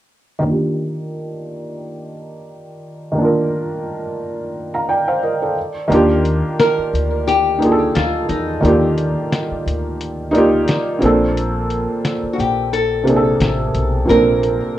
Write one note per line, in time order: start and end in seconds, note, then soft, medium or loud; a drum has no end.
0.39 3.10 D#3 medium
0.39 3.12 A#3 medium
0.45 3.14 D4 medium
0.45 3.15 F4 medium
0.52 3.17 G4 medium
3.12 5.49 D#3 medium
3.12 5.51 A#3 medium
3.18 5.53 D4 medium
3.18 5.54 F4 medium
3.25 4.55 A#4 medium
4.74 4.88 F5 soft
4.74 4.88 A#5 medium
4.89 5.07 D5 medium
4.89 5.07 G5 medium
5.08 5.22 C5 medium
5.08 5.22 F5 medium
5.23 5.41 A#4 medium
5.23 5.41 D#5 medium
5.42 5.74 A4 soft
5.42 5.74 D5 medium
5.88 6.41 D#2 medium
5.88 6.99 D#3 medium
5.88 7.00 A#3 medium
5.88 7.00 D4 medium
5.92 7.01 F4 medium
5.92 7.02 G4 loud
5.92 closed hi-hat medium
6.25 closed hi-hat medium
6.59 7.27 A#4 medium
6.59 snare loud
6.59 closed hi-hat medium
6.78 muted upright bass stroke soft
6.93 7.91 D2 medium
6.93 closed hi-hat medium
7.28 7.97 G4 loud
7.28 closed hi-hat medium
7.58 8.44 A#3 medium
7.58 8.45 D4 medium
7.58 8.43 D#4 medium
7.58 closed hi-hat medium
7.63 8.45 F4 medium
7.63 7.70 G#4 medium
7.72 8.50 A4 medium
7.95 8.27 D2 medium
7.95 8.28 F4 medium
7.95 snare loud
7.95 closed hi-hat medium
8.29 8.61 E2 medium
8.29 10.98 D#4 medium
8.29 closed hi-hat medium
8.61 9.14 D#2 loud
8.61 9.72 D#3 medium
8.61 9.72 A#3 medium
8.61 9.73 D5 medium
8.65 9.74 F4 medium
8.65 9.75 G4 medium
8.65 closed hi-hat medium
8.98 closed hi-hat medium
9.32 snare loud
9.32 closed hi-hat medium
9.51 muted upright bass stroke soft
9.66 10.64 D2 medium
9.66 closed hi-hat medium
10.01 closed hi-hat medium
10.31 10.99 A#3 medium
10.31 11.00 D#4 medium
10.31 11.02 D5 medium
10.31 closed hi-hat medium
10.36 11.03 F4 medium
10.36 11.04 G4 loud
10.68 snare loud
10.68 closed hi-hat medium
10.99 11.85 A#1 medium
10.99 12.10 A#2 medium
10.99 12.11 A#3 medium
10.99 12.12 C4 medium
10.99 closed hi-hat medium
11.04 12.13 D4 medium
11.04 12.14 A4 medium
11.37 closed hi-hat medium
11.70 closed hi-hat medium
12.05 snare loud
12.05 closed hi-hat medium
12.23 muted upright bass stroke soft
12.33 12.39 F#4 medium
12.38 13.36 A#1 medium
12.38 12.72 G4 medium
12.38 closed hi-hat medium
12.73 14.09 A4 medium
12.73 closed hi-hat medium
13.04 13.88 C3 medium
13.04 13.89 A#3 medium
13.04 13.90 C4 medium
13.04 closed hi-hat medium
13.08 13.91 D4 medium
13.08 13.15 G#4 medium
13.16 13.95 A4 medium
13.40 13.73 A1 medium
13.40 snare loud
13.40 closed hi-hat medium
13.74 14.07 B1 medium
13.74 closed hi-hat medium
14.06 14.59 A#1 medium
14.06 14.79 A#2 medium
14.06 14.79 A#3 medium
14.06 14.79 C4 medium
14.06 14.78 A#4 medium
14.10 14.79 D4 medium
14.10 14.79 A#4 medium
14.10 closed hi-hat medium
14.43 closed hi-hat medium